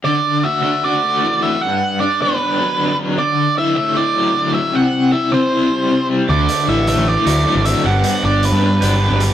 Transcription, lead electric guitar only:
X:1
M:4/4
L:1/8
Q:1/4=154
K:Dmix
V:1 name="Lead electric guitar"
d2 e e d3 e | f2 d B4 z | d2 e e d3 e | f2 e c4 z |
d2 e e d3 e | f2 d B4 z |]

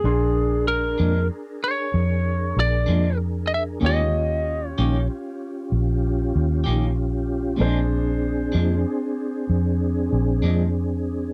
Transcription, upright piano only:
X:1
M:12/8
L:1/8
Q:3/8=63
K:Bbmix
V:1 name="Upright piano"
[DAc']12 | [FG_d]12 | [DAc]12 |]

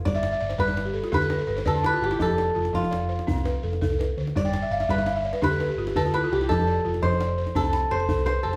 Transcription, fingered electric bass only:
X:1
M:12/8
L:1/8
Q:3/8=112
K:Flyd
V:1 name="Fingered electric bass" clef=bass
G,,,2 G,,, G,,,3 D,,2 G,,, D,,2 G,,, | F,,,2 F,,, F,,,3 C,,2 F,,, C,,2 D,, | G,,,2 G,,, G,,,3 D,,2 G,,, D,,2 C,, | F,,,2 F,,, F,,,3 C,,2 F,,, C,,2 F,,, |]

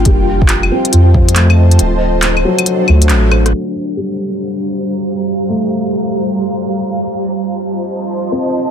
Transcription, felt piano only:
X:1
M:4/4
L:1/16
Q:"Swing 16ths" 1/4=138
K:Gm
V:1 name="Felt piano"
[G,B,D]6 C4 F, A,4- A,- | A,3 z3 ^F,4 A,6- | A,2 z2 G,12- | G,2 A,12- A,2- |
A, z8 z3 C4 |]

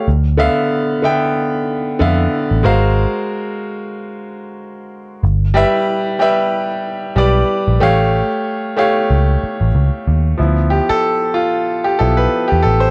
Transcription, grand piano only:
X:1
M:4/4
L:1/16
Q:"Swing 16ths" 1/4=93
K:Ddor
V:1 name="Grand piano"
z2 [D,B,ef]4 [D,B,eg]2 z4 [D,B,ef]4 | [^G,^F^A^B^e]2 z12 z2 | z2 [G,GBe]4 [G,GBe]2 z4 [G,GBd]2 z2 | [A,G^cf]2 z4 [A,Gcf]6 z4 |
z2 G A3 F3 G A B2 G A c |]
V:2 name="Grand piano"
z16 | z16 | z16 | z16 |
[F,B,E]2 z8 [F,B,E]2 z4 |]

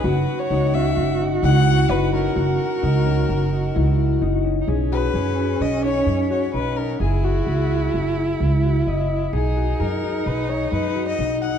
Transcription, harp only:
X:1
M:5/4
L:1/8
Q:1/4=129
K:B
V:1 name="Harp"
F2 D C2 D E2 D C | F2 D C2 D E2 D C | G F G F2 D2 F D2 | G F G F2 E2 F d2 |
G F G F2 D2 F D2 |]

